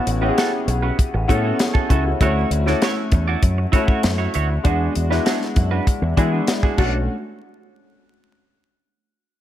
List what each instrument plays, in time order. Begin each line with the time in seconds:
Already playing: grand piano B3 C#4 E4 F#4
0.07 fingered electric bass A1, muted clean electric guitar stroke, closed hi-hat
0.21 grand piano B3 C#4 E4 G4, clean electric guitar C#4 F#4 B4
0.28 grand piano G#4
0.37 clean electric guitar C#4 F#4 A4, snare, closed hi-hat
0.53 muted clean electric guitar stroke
0.68 fingered electric bass B1, muted clean electric guitar stroke, closed hi-hat
0.82 clean electric guitar C#4 F#4 B4
0.98 muted clean electric guitar stroke, kick, closed hi-hat
1.14 fingered electric bass A1, muted clean electric guitar stroke
1.28 fingered electric bass A2, grand piano B3 C#4 E4 A4, clean electric guitar C#4 F#4 A4, kick, closed hi-hat
1.43 clean electric guitar C#4 F#4 A4
1.59 grand piano G#4 C#5, muted clean electric guitar stroke, snare, closed hi-hat
1.74 clean electric guitar C#4 F#4 A4, kick
1.89 fingered electric bass C#2, clean electric guitar C#4 F#4 A4, grand piano E4 A4, kick, closed hi-hat
2.05 grand piano C#4 F#4, muted clean electric guitar stroke
2.21 fingered electric bass D2, grand piano A3 C#4 E4 F#4, clean electric guitar E4 F#4 C#5, kick, closed hi-hat
2.51 fingered electric bass D2, closed hi-hat
2.66 grand piano A3 C#4 E4 A4, clean electric guitar E4 F#4 D5, snare
2.82 clean electric guitar E4 F#4 C#5, snare, closed hi-hat
2.97 muted clean electric guitar stroke
3.12 fingered electric bass E2, muted clean electric guitar stroke, kick, closed hi-hat
3.28 clean electric guitar E4 F#4 D5
3.43 fingered electric bass F#2, kick, closed hi-hat
3.58 muted clean electric guitar stroke
3.72 grand piano A3 C#4 E4 F#4, clean electric guitar E4 F#4 C#5, kick, closed hi-hat
3.87 clean electric guitar E4 F#4 C#5, kick
4.03 fingered electric bass F#2, snare, closed hi-hat
4.18 clean electric guitar E4 F#4 C#5
4.34 fingered electric bass D2, clean electric guitar E4 F#4 C#5, closed hi-hat
4.49 muted clean electric guitar stroke
4.63 fingered electric bass E2, grand piano G#3 B3 D4 F#4, clean electric guitar D4 F#4 G#4, kick, closed hi-hat
4.95 fingered electric bass E2, muted clean electric guitar stroke, closed hi-hat
5.10 grand piano G#3 B3 D4 E4, clean electric guitar D4 F#4 B4, snare
5.25 clean electric guitar D4 F#4 G#4, snare, closed hi-hat
5.41 muted clean electric guitar stroke, snare
5.56 fingered electric bass F#2, muted clean electric guitar stroke, kick, closed hi-hat
5.71 clean electric guitar D4 F#4 B4
5.87 muted clean electric guitar stroke, kick, closed hi-hat
6.02 fingered electric bass E2, muted clean electric guitar stroke
6.17 fingered electric bass E3, grand piano G#3 B3 D4 E4, clean electric guitar D4 F#4 G#4, kick, closed hi-hat
6.32 clean electric guitar D4 F#4 G#4
6.47 snare, closed hi-hat
6.63 clean electric guitar D4 F#4 G#4, kick
6.78 fingered electric bass B1, grand piano A3 C#4 D4 F#4, clean electric guitar D4 F#4 A4, kick, crash